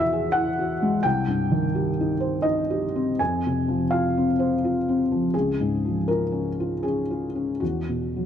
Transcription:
Already playing: E2 B2 E3 E4 F#4
0.00 E5
0.13 G#4
0.32 E4 F#5
0.59 F#4
0.82 G#3
1.03 C2 G5
1.28 G2
1.51 D#3
1.75 G4
2.00 D#4
2.20 C5
2.42 D#4 D#5
2.70 G4
2.95 C4
3.19 F2 G#5
3.47 C3
3.68 F3
3.91 F4 F5
4.17 C4
4.39 C5
4.64 F4
4.89 C4
5.12 F3
5.34 C#2 G#4
5.61 G#2
5.85 F3
6.08 F4 A#4
6.32 C#4
6.60 F4
6.83 C#4 G#4
7.11 F4
7.35 C#4
7.60 E2 F#4
7.89 B2
8.16 F#3

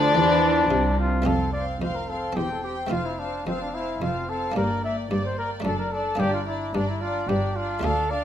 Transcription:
Already playing: D2 D3 F3 D4 F4 D5
0.14 E2 E3
0.70 C2 C3
0.99 F4
1.22 A3 C4 F4 A4
1.26 F1 F2 C4 F5 C6
1.53 C4 D5 F5 C6
1.81 F1 F2 C4 C5 F5 C6
1.95 A#4
2.09 C4 A4 F5 C6
2.33 E2 C4
2.37 E1 E2 C4 G4 G5 C6
2.51 A4
2.64 C4 G4 G5 C6
2.87 A3 C4 F4
2.91 F1 F2 C4 F4 F5 A5
3.06 E4
3.19 C4 D4 F5 A5
3.47 F1 F2 C4 F5 A5
3.62 D4
3.74 C4 E4 F5 A5
4.01 F1 F2 C4 F4 F5 A5
4.29 C4 A4 F5 A5
4.52 A#3 D4
4.56 G1 G2 A#3 A#4 D5 G5
4.83 A#3 D5 E5 G5
5.10 G1 G2 A#3 D5 G5
5.25 C5
5.37 A#3 A#4 D5 G5
5.60 A3 D4
5.64 F#1 F#2 D4 A4 D5 A5
5.79 A#4
5.92 D4 A4 D5 A5
6.15 A#3 D4
6.19 G1 G2 G4 D5 A#5
6.34 F4
6.47 D4 E4 D5 A#5
6.74 G1 G2 D4 D5 A#5
6.89 E4
7.01 D4 F4 D5 A#5
7.28 G1 G2 D4 G4 D5 A#5
7.56 D4 F4 D5 A#5
7.79 D2 A3 D4 F4 F5 A5
7.84 D2 D4 A4
8.10 D4 D5 F5 A5

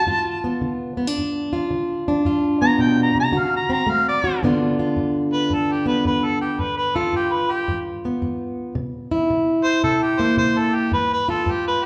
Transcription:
Already playing: A5
0.07 G2 F4
0.44 B3
0.61 D3
0.97 B3
1.07 D4
1.18 G2
1.53 F4
1.71 D3
2.08 D4
2.25 G2 F4
2.62 B3 A#5
2.79 B2 G5
3.03 A#5
3.15 C3
3.20 A#5
3.32 D3 F#4
3.40 F5
3.57 A#5
3.69 C4 A#5
3.87 A3
3.91 F5
4.09 D5
4.24 F#4
4.43 G2 D3 B3 D4 F4
4.79 F4
4.96 G2
5.33 B4
5.50 G2 A4
5.72 G4
5.86 B3 B4
6.05 G2 B4
6.25 A4
6.41 G4
6.59 G2 B4
6.77 B4
6.96 F4 A4
7.13 G2 G4
7.33 B4
7.51 G4
7.68 G2
8.05 B3
8.22 G2
8.75 C3
9.11 E4
9.30 C3
9.64 C5
9.84 C3 A4
10.03 G4
10.20 A#3 C5
10.37 C3 C5
10.59 A4
10.75 G4
10.92 G2 B4
11.13 B4
11.29 F4 A4
11.46 G2
11.51 G4
11.68 B4

